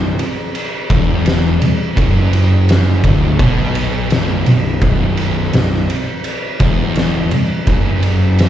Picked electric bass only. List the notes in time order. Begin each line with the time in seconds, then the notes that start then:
Already playing: B0
0.90 E1
1.62 muted picked electric bass stroke
1.97 F#1
3.04 D1
3.39 B1
4.10 B0
4.46 B0
4.82 B0
5.54 B0
6.60 E1
7.32 muted picked electric bass stroke
7.67 F#1